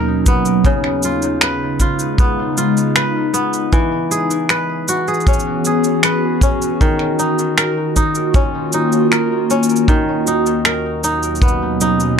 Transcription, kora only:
Already playing: B3 D#4 A#4
0.28 B3
0.66 C#3
1.05 F4
1.43 B4
1.81 F4
2.19 B3
2.58 F4
2.96 B4
3.34 B3
3.73 E3
4.11 G#4
4.50 B4
4.89 F#4
5.08 G#4
5.28 C#4
5.67 G#4
6.05 B4
6.43 C#4
6.81 D#3
7.19 D#4
7.58 A#4
7.96 D#4
8.35 C#4
8.74 D#4
9.12 A#4
9.51 C#4
9.88 D#3
10.28 D#4
10.66 A#4
11.04 D#4
11.42 B3
11.81 D#4

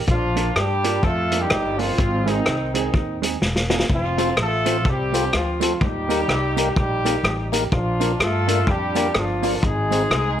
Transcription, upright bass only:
0.07 A#1
0.56 G2
1.03 F2
1.51 G1
1.98 G#1
2.46 C2
2.93 D#2
3.42 E1
3.89 F1
4.37 A1
4.85 C2
5.33 D2
5.81 D#2
6.28 C2
6.76 A#1
7.23 A1
7.72 A#1
8.19 G2
8.67 F2
9.15 G1
9.63 G#1
10.10 C2

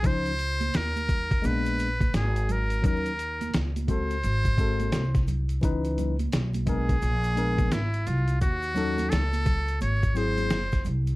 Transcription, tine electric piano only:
0.03 F3 C#4 D#4 C5
1.42 G#3 A#3 B3 D4
2.82 F#3 C#4 D#4 A#4
3.87 G#3 C4 F#4 A4
4.57 G#3 C4 F#4 A4
5.61 E3 C#4 D#4 B4
6.66 G#3 B3 D4 A#4
7.35 G#3 B3 D4 A#4
8.74 F#3 C#4 D#4 A4
10.14 F#3 C4 E4 G#4

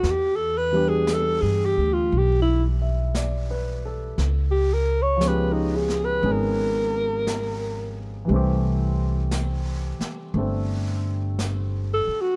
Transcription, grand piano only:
0.71 E3 G3 B3 D4
0.76 G4
2.82 E5
3.17 D5
3.51 B4
3.85 A4
5.17 F3 G#3
5.22 B3 C#4
5.28 G4
6.22 B3 C#4 D#4 G#4
8.25 E3 G3
8.31 A3 C4
8.36 G4
10.35 A3 C4 D4 A4

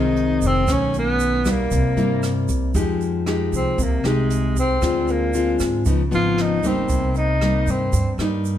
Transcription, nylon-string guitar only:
Already playing: C3 D#3 G#3 C4
0.68 B2 D#3 A3 C#4
1.45 G3 A#3 E4
1.72 C3
1.97 G3 A#3 E4
2.75 F3 G#3 D#4 G4
3.26 G#3 D#4 G4
3.79 C3
4.04 G#3 D#4 G4
4.82 D3 G#3 C4 F4
5.34 G#3 C4 F4
5.86 C#3 F3 B3 D#4
6.11 F3 B3 D#4
6.63 G3 A#3 D#4
6.90 C3
7.42 G3 A#3 D#4
7.94 G2
8.20 G3 A#3 D#4

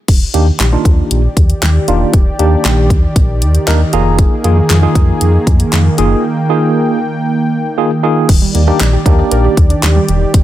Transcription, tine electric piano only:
0.34 A#3 D4 D#4 G4
0.59 D#4 G4
0.72 A#3 D4 D#4 F4
1.88 A#3 D4 D#4 F4
2.39 A#3 D4 D#4 G4
3.67 A#3 D4 D#4 A#4 D#5
3.93 A#3 D#4 F4 G#4 A#5
4.44 A#3 D#4 F4 G#4
4.70 F4 G#4
4.82 A#3 D#4 F4 G#4
5.98 A#3 D#4 F4 G#4
6.49 A#3 D#4 F4 G#4
7.77 A#3 D#4 F4 G#4
8.03 A#3 D#4 F4 G#4
8.54 D#4 G4
8.67 A#3 D4 D#4 G4
8.93 D#4 G4
9.06 A#3 D4 D#4 G4

